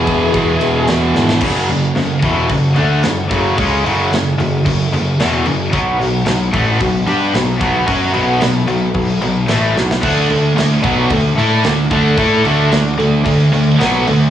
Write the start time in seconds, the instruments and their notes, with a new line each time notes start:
Already playing: distorted electric guitar E2 B2 E3, string section E3 B3 F#4 G#4, lead electric guitar G#4
0.07 picked electric bass E1, kick, ride
0.33 picked electric bass E1, distorted electric guitar E2 B2 E3, kick, ride
0.61 picked electric bass E1, ride
0.87 picked electric bass E1, snare, ride
1.15 picked electric bass G#1, snare
1.29 snare
1.41 picked electric bass F#1, distorted electric guitar F#2 C#3 F#3, string section C#4 F#4 A4 F#5, kick, crash
1.68 picked electric bass F#1, distorted electric guitar F#2 C#3, crash
1.95 picked electric bass F#1, distorted electric guitar F#2 C#3, snare, crash
2.22 picked electric bass E1, distorted electric guitar E2 B2 E3, kick, crash
2.50 picked electric bass F#1, distorted electric guitar F#2 C#3, kick, crash
2.76 picked electric bass D2, distorted electric guitar D3 A3 D4, crash
3.03 picked electric bass F#1, distorted electric guitar F#2 C#3, snare, crash
3.30 picked electric bass F#1, distorted electric guitar F#2 C#3 F#3, kick, crash
3.58 picked electric bass C#2, distorted electric guitar C#3 G#3 C#4, string section E5, kick, crash
3.84 picked electric bass F#1, distorted electric guitar F#2 C#3 F#3, crash
4.11 picked electric bass F#1, distorted electric guitar F#2 C#3, snare, crash
4.39 picked electric bass F#1, distorted electric guitar F#2 C#3, crash
4.66 picked electric bass F#1, distorted electric guitar F#2 C#3, kick, crash
4.93 picked electric bass F#1, distorted electric guitar F#2 C#3, crash
5.20 picked electric bass E1, distorted electric guitar E2 B2 E3, snare, crash
5.46 picked electric bass F#1, distorted electric guitar F#2 C#3, crash
5.72 picked electric bass B1, distorted electric guitar B2 F#3 B3, string section B3 F#5 B5, kick, crash
5.99 picked electric bass B1, distorted electric guitar B2 F#3, crash
6.26 picked electric bass B1, distorted electric guitar B2 F#3, snare, crash
6.53 picked electric bass A1, distorted electric guitar A2 E3 A3, kick, crash
6.80 picked electric bass B1, distorted electric guitar B2 F#3, kick, crash
7.06 picked electric bass G2, distorted electric guitar G3 D4 G4, crash
7.34 picked electric bass B1, distorted electric guitar B2 F#3, snare, crash
7.60 picked electric bass B1, distorted electric guitar B2 F#3 B3, kick, crash
7.88 picked electric bass F#2, distorted electric guitar F#3 C#4 F#4, string section E5, kick, crash
8.14 picked electric bass B1, distorted electric guitar B2 F#3 B3, crash
8.41 picked electric bass B1, distorted electric guitar B2 F#3, snare, crash
8.67 picked electric bass B1, distorted electric guitar B2 F#3, crash
8.94 picked electric bass B1, distorted electric guitar B2 F#3, kick, crash
9.22 picked electric bass B1, distorted electric guitar B2 F#3, crash
9.48 picked electric bass A1, distorted electric guitar A2 E3 A3, snare, crash
9.76 picked electric bass B1, distorted electric guitar B2 F#3, snare
9.91 snare
10.00 picked electric bass D2, distorted electric guitar D3 A3 D4, string section A3 A4 D5 D6, kick, crash
10.29 picked electric bass D2, distorted electric guitar D3 A3, crash
10.57 picked electric bass D2, distorted electric guitar D3 A3, snare, crash
10.83 picked electric bass B1, distorted electric guitar B2 F#3 B3, kick, crash
11.10 picked electric bass D2, distorted electric guitar D3 A3, kick, crash
11.37 picked electric bass A2, distorted electric guitar A3 E4 A4, crash
11.64 picked electric bass D2, distorted electric guitar D3 A3, snare, crash
11.91 picked electric bass D2, distorted electric guitar D3 A3 D4, kick, crash
12.17 picked electric bass A2, distorted electric guitar A3 E4 A4, kick, crash
12.44 picked electric bass D2, distorted electric guitar D3 A3 D4, crash
12.72 picked electric bass D2, distorted electric guitar D3 A3, snare, crash
12.98 picked electric bass D2, distorted electric guitar D3 A3, crash
13.25 picked electric bass D2, distorted electric guitar D3 A3, kick, crash
13.52 picked electric bass D2, distorted electric guitar D3 A3, crash
13.79 picked electric bass B1, distorted electric guitar B2 F#3 B3, snare, crash
14.06 picked electric bass D2, distorted electric guitar D3 A3, crash